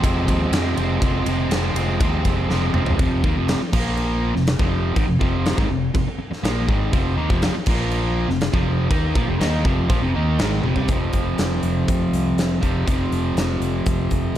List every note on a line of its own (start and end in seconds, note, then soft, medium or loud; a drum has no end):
0.01 0.26 F1 medium
0.01 1.00 F2 medium
0.01 0.51 C3 medium
0.01 0.53 F3 medium
0.01 0.54 G#3 loud
0.01 0.55 C4 medium
0.01 kick loud
0.01 ride loud
0.28 0.50 D#2 medium
0.28 kick medium
0.28 ride medium
0.51 0.74 F2 medium
0.51 1.00 C3 medium
0.51 0.80 F3 medium
0.51 0.78 G#3 medium
0.51 snare loud
0.51 ride loud
0.55 0.76 C4 medium
0.75 0.99 F1 medium
0.75 1.01 G#3 medium
0.75 1.00 C4 medium
0.75 ride medium
0.80 1.02 F3 medium
1.01 1.25 F1 medium
1.01 1.50 F2 medium
1.01 1.50 C3 medium
1.01 1.27 F3 loud
1.01 1.26 G#3 medium
1.01 1.24 C4 loud
1.01 kick loud
1.01 ride loud
1.25 1.49 F1 medium
1.25 1.50 F3 medium
1.25 1.52 G#3 medium
1.25 1.53 C4 medium
1.25 ride medium
1.49 1.73 F1 medium
1.49 1.99 C3 medium
1.49 1.77 F3 medium
1.49 1.76 G#3 medium
1.49 snare loud
1.49 ride loud
1.54 1.74 C4 medium
1.74 1.98 F1 medium
1.74 2.01 G#3 medium
1.74 2.02 C4 medium
1.74 ride medium
1.79 2.00 F3 medium
2.00 2.23 D#2 medium
2.00 2.74 F2 medium
2.00 2.48 C3 medium
2.00 2.49 F3 medium
2.00 2.50 G#3 medium
2.00 2.51 C4 loud
2.00 kick loud
2.00 ride loud
2.25 2.48 F1 medium
2.25 kick medium
2.25 ride medium
2.49 2.72 F1 medium
2.49 2.97 C3 medium
2.49 2.75 F3 medium
2.49 2.74 G#3 medium
2.49 2.72 C4 medium
2.49 snare medium
2.73 2.97 F1 medium
2.73 2.98 F3 medium
2.73 2.98 G#3 medium
2.73 2.97 C4 medium
2.73 mid tom medium
2.86 floor tom medium
2.99 3.22 F1 medium
2.99 3.23 F2 medium
2.99 3.23 C3 medium
2.99 3.23 F3 loud
2.99 kick loud
2.99 crash medium
3.24 3.34 D#2 loud
3.24 3.35 D#3 loud
3.24 3.35 A#3 medium
3.24 kick loud
3.35 3.58 F1 medium
3.35 3.60 F2 loud
3.35 3.60 C3 medium
3.35 3.60 F3 medium
3.48 snare loud
3.48 crash medium
3.60 muted fingered electric bass stroke soft
3.60 muted distorted electric guitar stroke medium
3.73 4.30 A#1 medium
3.73 4.33 A#2 medium
3.73 4.34 F3 medium
3.73 4.34 A#3 loud
3.73 kick loud
3.73 crash loud
3.97 crash medium
4.35 4.57 F1 medium
4.35 4.54 F2 medium
4.35 4.54 C3 medium
4.35 snare soft
4.47 snare loud
4.47 crash medium
4.59 4.93 F1 loud
4.59 4.94 F2 loud
4.59 4.95 C3 medium
4.59 4.96 F3 loud
4.59 kick loud
4.95 5.06 G#1 medium
4.95 5.07 G#2 loud
4.95 5.07 D#3 loud
4.95 kick loud
4.95 crash medium
5.07 5.19 F1 medium
5.07 5.18 F2 medium
5.07 5.19 C3 medium
5.19 5.55 F1 medium
5.19 5.56 F2 medium
5.19 5.56 C3 loud
5.19 5.57 F3 loud
5.19 kick loud
5.46 snare loud
5.46 crash medium
5.57 5.68 G#1 medium
5.57 5.68 G#2 medium
5.57 5.69 D#3 loud
5.57 kick loud
5.69 5.92 F1 medium
5.69 5.89 F2 medium
5.69 5.90 C3 medium
5.94 6.05 F1 medium
5.94 6.06 F2 medium
5.94 6.07 C3 medium
5.94 kick medium
5.94 crash medium
6.06 muted fingered electric bass stroke soft
6.06 muted distorted electric guitar stroke medium
6.18 muted distorted electric guitar stroke medium
6.18 muted fingered electric bass stroke soft
6.31 muted distorted electric guitar stroke medium
6.31 muted fingered electric bass stroke soft
6.31 snare soft
6.43 6.66 A#1 loud
6.43 6.67 A#2 medium
6.43 6.68 F3 loud
6.43 6.68 A#3 loud
6.43 snare loud
6.43 crash medium
6.67 6.91 G#1 medium
6.67 6.92 G#2 medium
6.67 6.92 D#3 loud
6.67 6.92 G#3 loud
6.67 kick loud
6.92 7.16 F1 medium
6.92 7.16 F2 medium
6.92 7.17 C3 loud
6.92 7.17 F3 loud
6.92 kick loud
6.92 crash medium
7.16 7.28 D#2 loud
7.16 7.29 D#3 medium
7.16 7.29 A#3 loud
7.30 7.53 F1 loud
7.30 7.53 F2 loud
7.30 7.54 C3 medium
7.30 7.55 F3 loud
7.30 kick loud
7.42 snare loud
7.42 crash medium
7.54 muted fingered electric bass stroke soft
7.54 muted distorted electric guitar stroke medium
7.66 8.25 A#1 medium
7.66 8.28 A#2 medium
7.66 8.29 F3 loud
7.66 8.29 A#3 loud
7.66 kick loud
7.66 crash loud
7.91 crash medium
8.28 8.51 F1 medium
8.28 8.48 F2 medium
8.28 8.49 C3 medium
8.28 snare soft
8.41 snare loud
8.41 crash medium
8.53 8.88 F1 loud
8.53 8.89 F2 medium
8.53 8.90 C3 loud
8.53 8.90 F3 loud
8.53 kick loud
8.90 9.14 D#2 medium
8.90 9.14 D#3 loud
8.90 9.15 A#3 loud
8.90 9.15 D#4 loud
8.90 kick loud
8.90 crash medium
9.15 9.27 A#1 loud
9.15 9.27 A#2 medium
9.15 9.27 F3 loud
9.15 kick loud
9.27 9.39 F1 loud
9.27 9.39 F2 medium
9.27 9.39 C3 medium
9.39 9.63 D#2 loud
9.39 9.63 D#3 medium
9.39 9.64 A#3 medium
9.39 9.64 D#4 loud
9.39 snare loud
9.39 crash medium
9.64 9.88 F1 medium
9.64 9.89 F2 medium
9.64 9.88 C3 loud
9.64 9.88 F3 loud
9.64 kick loud
9.89 10.01 A#1 medium
9.89 10.01 A#2 medium
9.89 10.01 F3 loud
9.89 kick loud
9.89 crash medium
10.01 10.13 F1 loud
10.01 10.13 F2 medium
10.01 10.14 C3 loud
10.14 10.38 D#2 loud
10.14 10.38 D#3 medium
10.14 10.38 A#3 loud
10.14 10.39 D#4 medium
10.38 10.62 G#1 medium
10.38 10.63 G#2 medium
10.38 10.63 D#3 loud
10.38 10.63 G#3 loud
10.38 snare loud
10.38 crash medium
10.63 10.76 F1 medium
10.63 10.75 F2 medium
10.63 10.75 C3 loud
10.63 high tom medium
10.76 10.88 C2 loud
10.76 10.88 C3 medium
10.76 10.88 G3 medium
10.76 floor tom medium
10.88 11.09 F1 medium
10.88 12.61 F2 medium
10.88 12.62 C3 medium
10.88 12.60 F3 medium
10.88 kick loud
10.88 closed hi-hat medium
11.13 11.33 F1 medium
11.13 kick medium
11.13 closed hi-hat medium
11.38 11.58 F1 medium
11.38 snare loud
11.38 closed hi-hat medium
11.63 11.83 F1 medium
11.63 closed hi-hat medium
11.88 12.08 F1 medium
11.88 kick loud
11.88 closed hi-hat medium
12.12 12.32 C2 medium
12.12 closed hi-hat medium
12.37 12.57 F1 medium
12.37 snare loud
12.37 closed hi-hat medium
12.61 12.82 F1 medium
12.61 12.85 F2 medium
12.61 12.86 C3 medium
12.61 12.85 F3 medium
12.61 kick medium
12.61 closed hi-hat medium
12.86 13.07 F1 medium
12.86 14.38 F2 medium
12.86 14.38 C3 medium
12.86 14.38 F3 medium
12.86 kick loud
12.86 closed hi-hat medium
13.11 13.31 F1 medium
13.11 closed hi-hat medium
13.35 13.56 F1 medium
13.35 snare loud
13.35 closed hi-hat medium
13.60 13.80 F1 medium
13.60 closed hi-hat medium
13.86 14.06 F1 medium
13.86 kick loud
13.86 closed hi-hat medium
14.11 14.31 F1 medium
14.11 kick medium
14.11 closed hi-hat medium